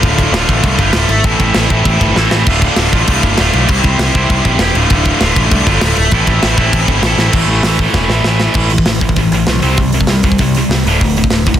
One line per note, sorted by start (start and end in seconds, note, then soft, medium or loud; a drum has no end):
0.00 0.24 D1 medium
0.00 0.32 D2 loud
0.00 0.33 A2 loud
0.00 0.34 D3 loud
0.00 0.35 A3 loud
0.00 0.34 F4 loud
0.00 kick loud
0.00 crash medium
0.18 kick medium
0.18 crash medium
0.31 0.43 D1 loud
0.31 0.79 D2 medium
0.31 0.79 A2 medium
0.31 0.80 D3 medium
0.31 snare loud
0.31 crash medium
0.36 0.80 A3 medium
0.36 0.79 F4 medium
0.48 0.59 A1 medium
0.48 kick medium
0.48 crash medium
0.63 0.75 C2 loud
0.63 kick loud
0.63 crash medium
0.78 0.90 G1 medium
0.78 1.10 A2 medium
0.78 1.10 D3 medium
0.78 1.25 A3 medium
0.78 1.10 F4 medium
0.78 kick medium
0.78 crash medium
0.82 1.11 D2 medium
0.93 1.05 D1 loud
0.93 snare loud
0.93 crash medium
1.09 1.20 G#1 medium
1.09 crash medium
1.23 1.35 A1 medium
1.23 1.70 A2 loud
1.23 1.70 E3 medium
1.23 1.70 A3 loud
1.23 1.70 C4 medium
1.23 1.70 E4 loud
1.23 1.69 A4 loud
1.23 kick loud
1.23 crash medium
1.39 1.50 A1 loud
1.39 kick medium
1.39 crash medium
1.54 1.67 A1 loud
1.54 snare loud
1.54 crash medium
1.70 1.81 A1 medium
1.70 2.15 A2 medium
1.70 2.15 E3 medium
1.70 2.16 A3 medium
1.70 2.16 C4 medium
1.70 2.16 E4 medium
1.70 2.16 A4 medium
1.70 kick medium
1.70 crash medium
1.85 1.96 A1 medium
1.85 kick loud
1.85 crash medium
2.01 2.12 G1 medium
2.01 kick medium
2.01 crash medium
2.16 2.27 A1 loud
2.16 2.46 A2 medium
2.16 2.46 E3 medium
2.16 2.47 A3 medium
2.16 2.47 C4 medium
2.16 2.47 E4 medium
2.16 2.47 A4 medium
2.16 snare medium
2.31 2.42 A1 medium
2.31 snare loud
2.46 2.68 D1 medium
2.46 2.92 D2 medium
2.46 2.92 A2 loud
2.46 2.93 D3 loud
2.46 2.92 A3 loud
2.46 2.92 F4 medium
2.46 kick loud
2.46 crash loud
2.46 crash medium
2.62 kick medium
2.62 crash medium
2.76 2.88 D1 medium
2.76 snare loud
2.76 crash medium
2.92 3.03 A1 medium
2.92 3.38 D2 medium
2.92 3.39 A2 medium
2.92 3.39 D3 medium
2.92 3.38 A3 medium
2.92 3.38 F4 medium
2.92 kick medium
2.92 crash medium
3.07 3.18 C2 medium
3.07 kick loud
3.07 crash loud
3.22 3.33 G1 medium
3.22 kick medium
3.22 crash medium
3.37 3.49 D1 medium
3.37 3.69 D2 medium
3.37 3.69 A2 medium
3.37 3.69 D3 medium
3.37 3.70 A3 medium
3.37 3.70 F4 medium
3.37 snare loud
3.37 crash medium
3.53 3.65 B1 medium
3.53 crash medium
3.68 3.80 C2 medium
3.68 4.14 C3 loud
3.68 4.14 G3 loud
3.68 4.15 C4 medium
3.68 4.15 E4 loud
3.68 4.15 G4 loud
3.68 4.14 C5 loud
3.68 kick loud
3.68 crash medium
3.83 3.94 C2 medium
3.83 kick medium
3.83 crash medium
3.99 4.10 C2 loud
3.99 snare loud
3.99 crash medium
4.14 4.25 C2 medium
4.14 4.60 G3 medium
4.14 4.61 C4 medium
4.14 4.61 E4 medium
4.14 4.60 G4 medium
4.14 4.60 C5 medium
4.14 kick medium
4.14 crash medium
4.19 4.60 C3 medium
4.29 4.40 C2 medium
4.29 kick loud
4.29 crash medium
4.45 4.56 A#1 loud
4.45 kick medium
4.45 crash medium
4.58 4.70 E1 loud
4.58 4.75 C3 medium
4.58 4.75 G3 medium
4.58 4.76 C4 medium
4.58 snare loud
4.58 crash medium
4.63 4.76 E4 medium
4.63 4.76 G4 loud
4.63 4.76 C5 medium
4.74 4.85 D1 medium
4.74 5.20 D2 loud
4.74 5.20 A2 loud
4.74 5.21 D3 loud
4.74 5.23 A3 loud
4.74 crash medium
4.79 5.22 F4 loud
4.90 5.12 D1 medium
4.90 kick loud
4.90 crash medium
5.05 kick medium
5.05 crash medium
5.21 5.32 D1 loud
5.21 5.66 D2 medium
5.21 5.66 A2 medium
5.21 5.67 D3 medium
5.21 5.68 A3 medium
5.21 5.66 F4 medium
5.21 snare loud
5.21 crash medium
5.36 5.47 A1 medium
5.36 kick medium
5.36 crash medium
5.51 5.62 C2 loud
5.51 kick loud
5.51 crash medium
5.67 5.77 G1 medium
5.67 5.98 D2 medium
5.67 5.98 A2 medium
5.67 5.97 D3 medium
5.67 6.13 A3 medium
5.67 5.97 F4 medium
5.67 kick medium
5.67 crash medium
5.81 5.92 D1 loud
5.81 snare loud
5.81 crash medium
5.97 6.08 D1 medium
5.97 crash medium
6.11 6.23 A1 loud
6.11 6.57 A2 medium
6.11 6.57 E3 medium
6.11 6.58 A3 loud
6.11 6.58 C4 medium
6.11 6.57 E4 loud
6.11 6.56 A4 loud
6.11 kick loud
6.11 crash medium
6.27 6.38 A1 loud
6.27 kick medium
6.27 crash medium
6.43 6.54 A1 loud
6.43 snare loud
6.43 crash medium
6.57 6.68 A1 loud
6.57 7.02 A2 medium
6.57 7.03 E3 medium
6.57 7.03 A3 medium
6.57 7.04 C4 medium
6.57 7.03 E4 medium
6.57 7.03 A4 medium
6.57 kick medium
6.57 crash medium
6.73 6.84 A1 loud
6.73 kick loud
6.73 crash medium
6.87 6.99 G1 medium
6.87 kick medium
6.87 crash medium
7.02 7.13 A1 medium
7.02 7.33 A2 medium
7.02 7.34 E3 medium
7.02 7.34 A3 medium
7.02 7.35 C4 medium
7.02 7.35 E4 medium
7.02 snare loud
7.02 crash medium
7.07 7.35 A4 medium
7.17 7.29 A1 medium
7.17 snare medium
7.33 7.45 A1 medium
7.33 7.50 A2 loud
7.33 7.49 E3 loud
7.33 7.49 A3 loud
7.33 kick loud
7.33 crash loud
7.48 7.60 A1 medium
7.48 7.64 A2 medium
7.48 7.65 E3 medium
7.48 7.66 A3 medium
7.63 7.86 A1 medium
7.63 7.81 A2 medium
7.63 7.80 E3 loud
7.63 snare loud
7.63 open hi-hat medium
7.67 7.80 A3 loud
7.79 7.95 A2 medium
7.79 7.95 E3 medium
7.79 7.96 A3 loud
7.79 kick medium
7.94 8.06 E1 medium
7.94 8.12 A2 loud
7.94 8.11 E3 loud
7.94 8.11 A3 loud
7.94 kick loud
7.94 snare medium
8.08 8.21 A1 medium
8.08 snare medium
8.12 8.25 A2 medium
8.12 8.26 E3 medium
8.12 8.26 A3 loud
8.23 8.47 A1 medium
8.23 8.42 A2 loud
8.23 8.41 E3 loud
8.23 snare medium
8.27 8.41 A3 loud
8.40 8.55 A2 medium
8.40 8.55 E3 medium
8.40 8.55 A3 loud
8.40 snare medium
8.54 8.79 A1 medium
8.54 8.71 A2 medium
8.54 8.71 E3 medium
8.54 8.71 A3 medium
8.54 kick loud
8.54 crash loud
8.70 8.86 A2 medium
8.70 8.86 E3 medium
8.70 open hi-hat medium
8.78 kick medium
8.86 8.98 A1 medium
8.86 9.01 A2 medium
8.86 9.02 E3 medium
8.86 snare loud
8.86 open hi-hat medium
9.01 9.13 A1 medium
9.01 9.16 A2 medium
9.01 9.17 E3 medium
9.01 kick medium
9.01 open hi-hat medium
9.09 kick medium
9.16 9.28 A1 medium
9.16 9.32 A2 medium
9.16 9.32 E3 medium
9.16 kick loud
9.16 open hi-hat medium
9.31 9.44 A1 medium
9.31 9.47 A2 medium
9.31 9.47 E3 medium
9.31 open hi-hat medium
9.47 9.59 B1 loud
9.47 9.62 A2 medium
9.47 9.62 E3 medium
9.47 snare loud
9.47 open hi-hat medium
9.62 9.75 C2 medium
9.62 9.77 C3 loud
9.62 9.78 G3 loud
9.62 9.78 C4 loud
9.62 open hi-hat medium
9.77 9.90 C2 medium
9.77 9.93 C3 medium
9.77 9.93 G3 medium
9.77 kick loud
9.77 open hi-hat medium
9.92 10.05 C2 medium
9.92 10.08 C3 medium
9.92 10.08 G3 medium
9.92 open hi-hat medium
10.01 kick medium
10.07 10.20 C2 medium
10.07 10.23 C3 medium
10.07 10.23 G3 medium
10.07 snare loud
10.07 open hi-hat medium
10.23 10.36 C2 medium
10.23 10.39 C3 medium
10.23 10.39 G3 medium
10.23 kick medium
10.23 open hi-hat medium
10.32 kick medium
10.38 10.63 C2 medium
10.38 10.54 C3 medium
10.38 10.54 G3 medium
10.38 kick loud
10.38 open hi-hat medium
10.55 10.70 C3 medium
10.55 10.70 G3 medium
10.55 open hi-hat medium
10.69 10.82 C2 medium
10.69 10.85 C3 medium
10.69 10.85 G3 medium
10.69 snare loud
10.69 open hi-hat medium
10.85 10.97 D1 medium
10.85 11.01 D2 loud
10.85 11.01 A2 loud
10.85 11.02 D3 loud
10.85 open hi-hat medium
11.01 11.24 D1 medium
11.01 11.16 D2 medium
11.01 11.16 A2 medium
11.01 kick loud
11.01 open hi-hat medium
11.17 11.31 D2 medium
11.17 11.31 A2 medium
11.17 open hi-hat medium
11.24 kick medium
11.30 11.43 D1 medium
11.30 11.46 D2 medium
11.30 11.46 A2 medium
11.30 snare loud
11.30 open hi-hat medium
11.46 11.58 D1 medium
11.46 11.60 D2 medium
11.46 11.60 A2 medium
11.46 kick medium
11.46 open hi-hat medium
11.54 kick medium